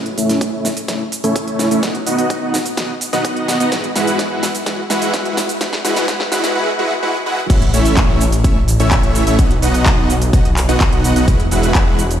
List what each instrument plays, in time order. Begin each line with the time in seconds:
0.06 closed hi-hat
0.17 supersaw synth A3 C#4 E4 C#5 E5, open hi-hat, shaker
0.29 snare, closed hi-hat, shaker
0.41 kick, closed hi-hat, shaker
0.53 supersaw synth A3 C#4 E4 C#5 E5
0.65 snare, open hi-hat, shaker
0.77 closed hi-hat, shaker
0.88 supersaw synth A3 C#4 E4 C#5 E5, kick, snare, closed hi-hat, shaker
1.12 open hi-hat, shaker
1.24 supersaw synth A3 C#4 E4 C#5 E5, closed hi-hat, shaker
1.36 kick, closed hi-hat, shaker
1.48 closed hi-hat
1.59 snare, open hi-hat, shaker
1.71 supersaw synth A3 C#4 E4 C#5 E5, closed hi-hat, shaker
1.83 supersaw synth B3 D#4 F#4 D#5 F#5, kick, snare, closed hi-hat, shaker
1.95 closed hi-hat
2.06 supersaw synth B3 D#4 F#4 D#5 F#5, open hi-hat, shaker
2.18 closed hi-hat, shaker
2.30 kick, closed hi-hat, shaker
2.42 supersaw synth B3 D#4 F#4 D#5 F#5
2.54 snare, open hi-hat, shaker
2.66 closed hi-hat, shaker
2.77 supersaw synth B3 D#4 F#4 D#5 F#5, kick, snare, closed hi-hat, shaker
3.01 open hi-hat, shaker
3.13 supersaw synth B3 D#4 F#4 D#5 F#5, snare, closed hi-hat, shaker
3.25 kick, closed hi-hat, shaker
3.37 closed hi-hat
3.48 snare, open hi-hat, shaker
3.60 supersaw synth B3 D#4 F#4 D#5 F#5, closed hi-hat, shaker
3.72 supersaw synth G#3 E4 F#4 B4 F#5, kick, snare, closed hi-hat, shaker
3.84 closed hi-hat
3.95 supersaw synth G#3 E4 F#4 B4 F#5, snare, open hi-hat, shaker
4.07 closed hi-hat, shaker
4.19 kick, snare, closed hi-hat, shaker
4.31 supersaw synth G#3 E4 F#4 B4 F#5
4.43 snare, open hi-hat, shaker
4.55 closed hi-hat, shaker
4.66 supersaw synth G#3 E4 F#4 B4 F#5, kick, snare, closed hi-hat, shaker
4.90 supersaw synth G#3 E4 F#4 B4 F#5, snare, open hi-hat, shaker
5.02 closed hi-hat, shaker
5.14 kick, snare, closed hi-hat, shaker
5.25 supersaw synth G#3 E4 F#4 B4 F#5, closed hi-hat
5.37 snare, open hi-hat, shaker
5.49 closed hi-hat, shaker
5.61 supersaw synth G#3 E4 F#4 B4 F#5, kick, snare, closed hi-hat, shaker
5.73 snare, closed hi-hat
5.84 supersaw synth G#3 E4 F#4 B4 F#5, snare, open hi-hat, shaker
5.96 snare, closed hi-hat, shaker
6.08 supersaw synth G#3 E4 F#4 B4, kick, snare, closed hi-hat, shaker
6.20 snare
6.32 supersaw synth G#3 E4 F#4 B4 F#5, snare, open hi-hat, shaker
6.44 snare, closed hi-hat, shaker
6.55 supersaw synth G#3 E4 F#4 B4 F#5
6.79 supersaw synth G#3 E4 F#4 B4 F#5
7.03 supersaw synth G#3 E4 F#4 B4 F#5
7.26 supersaw synth G#3 E4 F#4 B4 F#5
7.50 detuned saw bass A1, supersaw synth A3 C#4 E4 C#5 E5, kick, closed hi-hat, crash, shaker
7.62 closed hi-hat
7.73 detuned saw bass A1, supersaw synth A3 C#4 E4 C#5 E5, open hi-hat, shaker
7.85 closed hi-hat, shaker
7.97 kick, clap, closed hi-hat, shaker
8.09 detuned saw bass A1, supersaw synth A3 C#4 E4 C#5 E5
8.21 open hi-hat, shaker
8.32 closed hi-hat, shaker
8.44 detuned saw bass A1, supersaw synth A3 C#4 E4 C#5 E5, kick, closed hi-hat, shaker
8.68 open hi-hat, shaker
8.80 detuned saw bass A1, supersaw synth A3 C#4 E4 C#5 E5, closed hi-hat, shaker
8.91 kick, clap, closed hi-hat, shaker
9.03 closed hi-hat
9.15 open hi-hat, shaker
9.27 detuned saw bass A1, supersaw synth A3 C#4 E4 C#5 E5, closed hi-hat, shaker
9.39 detuned saw bass B1, supersaw synth B3 F#4 F#5, kick, closed hi-hat, shaker
9.51 closed hi-hat
9.62 detuned saw bass B1, supersaw synth B3 D#4 F#4 D#5 F#5, open hi-hat, shaker
9.74 closed hi-hat, shaker
9.86 kick, clap, closed hi-hat, shaker
9.98 detuned saw bass B1, supersaw synth B3 D#4 F#4 D#5 F#5
10.10 open hi-hat, shaker
10.22 closed hi-hat, shaker
10.33 detuned saw bass B1, supersaw synth B3 D#4 F#4 D#5 F#5, kick, closed hi-hat, shaker
10.45 closed hi-hat
10.57 clap, open hi-hat, shaker
10.69 detuned saw bass B1, supersaw synth B3 D#4 F#4 D#5 F#5, closed hi-hat, shaker
10.80 kick, clap, closed hi-hat, shaker
10.92 closed hi-hat
11.04 open hi-hat, shaker
11.16 detuned saw bass B1, supersaw synth B3 D#4 F#4 D#5 F#5, closed hi-hat, shaker
11.28 detuned saw bass E1, supersaw synth G#3 E4 F#4 B4, kick, closed hi-hat, shaker
11.40 closed hi-hat
11.51 detuned saw bass E1, supersaw synth G#3 E4 F#4 B4 F#5, open hi-hat, shaker
11.63 closed hi-hat, shaker
11.75 kick, clap, closed hi-hat, shaker
11.87 detuned saw bass E1, supersaw synth G#3 E4 F#4 B4 F#5
11.99 open hi-hat, shaker
12.11 closed hi-hat, shaker